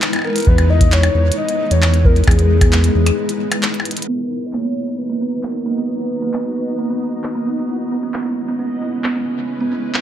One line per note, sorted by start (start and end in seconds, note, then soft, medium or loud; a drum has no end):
0.00 4.04 G#3 medium
0.00 4.04 B3 medium
0.00 4.04 D#4 medium
0.00 4.04 E4 medium
0.00 4.04 B4 medium
0.00 clap loud
0.13 closed hi-hat soft
0.13 percussion blips soft
0.16 percussion blips soft
0.19 percussion blips soft
0.22 percussion blips soft
0.25 0.49 A#4 loud
0.25 percussion blips soft
0.27 percussion blips soft
0.30 percussion blips soft
0.33 closed hi-hat medium
0.33 percussion blips soft
0.38 closed hi-hat soft
0.40 closed hi-hat soft
0.42 closed hi-hat soft
0.47 1.10 E2 loud
0.47 0.71 B4 loud
0.47 kick loud
0.58 closed hi-hat soft
0.58 percussion blips medium
0.70 0.94 D#5 loud
0.81 kick loud
0.81 closed hi-hat medium
0.92 1.37 C#5 loud
0.92 clap loud
1.03 closed hi-hat medium
1.03 percussion blips medium
1.15 1.31 E2 medium
1.32 closed hi-hat medium
1.37 1.73 D#5 loud
1.49 closed hi-hat medium
1.71 2.22 E2 loud
1.71 2.07 C#5 loud
1.71 closed hi-hat medium
1.82 clap loud
1.82 percussion blips medium
1.94 closed hi-hat soft
2.05 2.27 A#4 medium
2.05 kick loud
2.16 closed hi-hat soft
2.24 2.90 E2 loud
2.24 3.59 G#4 loud
2.24 kick loud
2.24 closed hi-hat soft
2.24 percussion blips medium
2.31 closed hi-hat medium
2.39 closed hi-hat soft
2.61 kick loud
2.61 closed hi-hat medium
2.61 percussion blips medium
2.73 clap loud
2.84 closed hi-hat medium
2.95 3.11 E2 medium
3.06 closed hi-hat medium
3.06 percussion blips medium
3.29 closed hi-hat medium
3.52 closed hi-hat medium
3.52 percussion blips medium
3.63 clap loud
3.74 closed hi-hat soft
3.80 percussion blips medium
3.85 closed hi-hat medium
3.91 closed hi-hat medium
3.97 closed hi-hat medium
4.02 closed hi-hat medium
4.08 4.14 B3 medium
4.08 10.01 B3 medium
4.08 7.65 D#4 medium
4.08 7.65 F#4 medium
4.08 4.48 A#4 loud
4.08 10.01 D#5 medium
4.08 5.87 A#5 medium
4.30 4.34 D#4 medium
4.46 4.55 D#5 medium
4.53 4.59 A#3 medium
4.53 4.98 C#5 loud
4.53 clap loud
4.64 4.70 B3 medium
4.87 4.90 D#4 medium
4.98 5.36 B4 loud
5.09 5.15 A#3 medium
5.21 5.26 B3 medium
5.36 5.45 B4 medium
5.43 5.47 D#4 medium
5.43 5.90 A#4 loud
5.43 clap loud
5.66 5.71 A#3 medium
5.77 5.83 B3 medium
5.88 7.46 B4 loud
5.88 7.67 A#5 medium
6.00 6.03 D#4 medium
6.22 6.28 A#3 medium
6.33 6.39 B3 medium
6.33 clap loud
6.56 6.59 D#4 medium
6.79 6.84 A#3 medium
6.90 6.96 B3 medium
7.12 7.16 D#4 medium
7.24 clap loud
7.35 7.41 A#3 medium
7.46 7.52 B3 medium
7.69 10.01 G#3 medium
7.69 10.01 C#4 medium
7.69 10.01 E4 medium
7.69 7.72 E4 medium
7.69 10.01 B4 medium
7.91 7.97 B3 loud
8.03 8.08 C#4 medium
8.14 clap loud
8.25 8.29 E4 medium
8.48 8.53 B3 medium
8.59 8.65 C#4 medium
8.82 8.85 E4 medium
9.04 9.10 B3 medium
9.04 clap loud
9.15 9.21 C#4 medium
9.38 9.41 E4 medium
9.60 9.66 B3 loud
9.72 9.77 C#4 loud
9.94 9.98 E4 medium
9.94 clap loud